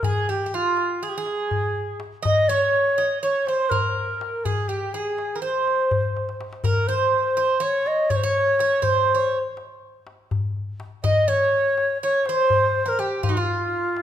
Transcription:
0.03 ney G#4, bouzouki G#4, darbuka dum
0.29 bouzouki G4, ney G4
0.41 darbuka ka
0.46 bouzouki G4
0.53 bouzouki F4, ney F4, darbuka ka
0.77 darbuka tek
1.03 bouzouki G#4, ney G#4
1.09 ney G4
1.17 ney G#4, bouzouki G#4
1.26 darbuka tek
1.51 darbuka dum
1.75 darbuka ka
2.00 darbuka tek
2.12 darbuka ka
2.23 bouzouki D#5, ney D#5, darbuka dum
2.49 ney C#5, bouzouki C#5, darbuka ka
2.62 darbuka ka
2.75 darbuka ka
2.98 bouzouki D#5, darbuka tek
3.22 ney C#5, bouzouki C#5
3.46 ney C5, bouzouki C5, darbuka tek
3.70 ney A#4, bouzouki A#4, darbuka dum
3.97 darbuka ka
4.21 darbuka tek
4.34 darbuka ka
4.45 ney G#4, bouzouki G#4, darbuka dum
4.68 ney G4, bouzouki G4
4.81 darbuka ka
4.93 ney G#4, bouzouki G#4, darbuka ka
5.18 darbuka tek
5.36 bouzouki A#4
5.42 bouzouki C5, ney C5, darbuka ka
5.67 darbuka tek
5.91 darbuka dum
6.17 darbuka tek
6.29 darbuka ka
6.41 darbuka tek
6.53 darbuka ka
6.64 bouzouki A#4, ney A#4, darbuka dum
6.87 ney C5, bouzouki C5, darbuka ka
7.01 darbuka ka
7.13 darbuka ka
7.37 bouzouki C5, darbuka tek
7.60 bouzouki C#5, ney C#5
7.86 ney D#5, darbuka tek
8.10 ney C#5, bouzouki C#5, darbuka dum
8.16 ney C5
8.23 bouzouki C#5, ney C#5
8.35 darbuka ka
8.59 bouzouki C#5, darbuka tek
8.72 darbuka ka
8.82 bouzouki C5, ney C5, darbuka dum
9.09 darbuka ka
9.15 bouzouki C#5
9.21 darbuka ka
9.33 darbuka ka
9.57 darbuka tek
10.07 darbuka tek
10.31 darbuka dum
10.56 darbuka ka
10.80 darbuka tek
10.92 darbuka ka
11.04 bouzouki D#5, ney D#5, darbuka dum
11.28 bouzouki C#5, ney C#5, darbuka ka
11.40 darbuka ka
11.52 darbuka ka
11.78 darbuka tek
12.02 ney C#5, bouzouki C#5
12.26 ney C5, bouzouki C5, darbuka tek
12.50 darbuka dum
12.74 darbuka ka
12.86 bouzouki A#4, ney A#4
12.99 bouzouki G4, ney G4, darbuka tek
13.11 darbuka ka
13.23 bouzouki F4, ney F4, darbuka dum
13.29 bouzouki D#4
13.37 bouzouki F4
13.61 darbuka ka
13.72 darbuka ka
13.97 darbuka tek

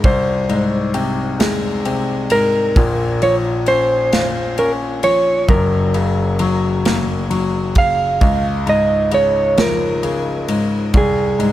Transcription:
0.04 grand piano C2, electric slide guitar C5, kick, ride
0.49 grand piano G#2, ride
0.94 grand piano C3, ride
1.39 grand piano G#3, snare, ride
1.85 grand piano C3, ride
2.30 grand piano G#2, electric slide guitar A#4, ride
2.76 grand piano A#1 A#2, kick, ride
3.22 grand piano F3, electric slide guitar C#5, ride
3.66 grand piano C#4, electric slide guitar C5, ride
4.13 grand piano F4, snare, ride
4.58 grand piano C#4, electric slide guitar A#4, ride
5.03 grand piano F3, electric slide guitar C#5, ride
5.48 grand piano F#1 F#2, electric slide guitar A#4, kick, ride
5.94 grand piano C#3, ride
6.39 grand piano F#3, ride
6.85 grand piano A#3, snare, ride
7.30 grand piano F#3, ride
7.75 grand piano C#3, electric slide guitar F5, kick, ride
8.21 grand piano C#2, kick, ride
8.67 grand piano G#2, electric slide guitar D#5, ride
9.11 grand piano C#3, electric slide guitar C#5, ride
9.57 grand piano F3, electric slide guitar A#4, snare, ride
10.03 grand piano C#3, ride
10.48 grand piano G#2, ride
10.94 grand piano C2, electric slide guitar G#4, kick, ride
11.39 grand piano G#2, ride

